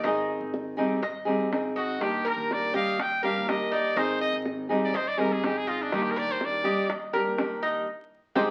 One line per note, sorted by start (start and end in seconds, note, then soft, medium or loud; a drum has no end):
0.03 0.39 G#1 medium
0.03 0.77 D#3 medium
0.03 0.77 C4 medium
0.03 0.52 D#4 medium
0.03 0.77 D#4 medium
0.03 0.76 G#4 medium
0.03 high bongo medium
0.28 high bongo soft
0.40 1.35 G#1 medium
0.54 high bongo medium
0.77 1.01 G3 medium
0.77 1.01 C4 medium
0.77 1.01 D#4 medium
0.77 1.01 G#4 medium
0.77 high bongo soft
1.02 1.26 D#5 medium
1.02 muted nylon-string guitar stroke medium
1.02 high bongo medium
1.25 1.51 G3 soft
1.25 1.51 C4 medium
1.25 1.50 D#4 medium
1.25 1.50 G#4 medium
1.38 1.97 G#1 medium
1.52 2.00 C4 medium
1.52 2.00 D#4 soft
1.52 2.00 G#4 medium
1.52 high bongo medium
1.52 low bongo medium
1.76 2.04 F#4 medium
1.76 2.24 D#5 medium
1.76 high bongo soft
1.99 2.35 D#2 loud
1.99 2.72 D#3 medium
1.99 2.75 G3 medium
1.99 2.73 D4 medium
1.99 2.73 G4 medium
1.99 2.29 G4 medium
1.99 high bongo medium
2.25 2.72 A#4 medium
2.25 2.54 A#4 medium
2.25 high bongo soft
2.36 3.31 D#2 medium
2.51 2.76 D5 medium
2.51 high bongo medium
2.74 2.98 G3 medium
2.74 2.98 D4 medium
2.74 2.97 G4 medium
2.74 3.21 D#5 medium
2.74 3.03 F5 loud
2.99 3.24 G5 medium
2.99 muted nylon-string guitar stroke medium
2.99 high bongo medium
3.23 3.46 G3 medium
3.23 3.47 D4 medium
3.23 3.47 G4 medium
3.23 3.70 A#4 medium
3.23 3.50 F5 medium
3.23 high bongo soft
3.35 3.93 D#2 medium
3.47 3.94 D#3 medium
3.47 3.95 G3 medium
3.47 3.96 D4 soft
3.47 3.96 G4 medium
3.47 3.74 D#5 medium
3.47 high bongo medium
3.47 low bongo medium
3.72 3.95 D#4 medium
3.72 3.99 D5 medium
3.72 high bongo soft
3.96 4.31 G#1 loud
3.96 4.68 D#3 medium
3.96 4.69 C4 medium
3.96 4.44 D#4 medium
3.96 4.70 D#4 medium
3.96 4.68 G#4 medium
3.96 4.21 C5 medium
3.96 high bongo medium
4.21 4.36 D#5 medium
4.21 high bongo soft
4.33 5.27 G#1 medium
4.46 high bongo medium
4.69 4.93 G3 medium
4.69 4.93 C4 medium
4.69 4.93 D#4 medium
4.69 4.93 G#4 medium
4.69 high bongo soft
4.84 4.98 D5 medium
4.93 5.09 C5 medium
4.93 5.18 D#5 medium
4.93 muted nylon-string guitar stroke medium
4.93 high bongo medium
5.08 5.21 D5 medium
5.18 5.43 G3 medium
5.18 5.42 C4 medium
5.18 5.42 D#4 medium
5.18 5.42 G#4 medium
5.18 5.34 A#4 medium
5.30 5.89 G#1 medium
5.30 5.47 G#4 medium
5.44 5.91 C4 soft
5.44 5.92 D#4 soft
5.44 5.59 G4 medium
5.44 5.92 G#4 medium
5.44 high bongo medium
5.44 low bongo medium
5.57 5.70 G#4 medium
5.67 5.84 F4 medium
5.67 6.15 D#5 medium
5.67 high bongo soft
5.82 5.96 D4 medium
5.91 6.27 D#2 loud
5.91 6.64 D#3 medium
5.91 6.66 G3 medium
5.91 6.65 D4 medium
5.91 6.04 D#4 medium
5.91 6.64 G4 medium
5.91 high bongo medium
6.02 6.13 G4 medium
6.11 6.19 A#4 medium
6.16 6.64 A#4 medium
6.16 6.33 D5 loud
6.16 high bongo soft
6.28 7.22 D#2 medium
6.28 6.46 C5 medium
6.41 6.92 D5 medium
6.41 high bongo medium
6.64 6.88 G3 medium
6.64 6.88 D4 medium
6.64 6.88 G4 medium
6.64 7.12 D#5 medium
6.89 muted nylon-string guitar stroke medium
6.89 high bongo medium
7.13 7.36 G3 medium
7.13 7.37 D4 medium
7.13 7.37 G4 medium
7.13 7.61 A#4 medium
7.13 high bongo soft
7.25 7.84 D#2 medium
7.37 7.86 D#3 soft
7.37 7.86 G3 soft
7.37 7.86 D4 medium
7.37 7.87 G4 medium
7.37 high bongo medium
7.37 low bongo medium
7.63 7.87 D#4 medium
7.63 high bongo soft
8.35 8.51 G#1 medium
8.35 8.51 G#3 medium
8.35 8.51 C4 loud
8.35 8.51 D#4 medium
8.35 8.51 G4 medium
8.35 8.51 G#4 medium
8.35 8.51 C5 medium
8.35 low bongo loud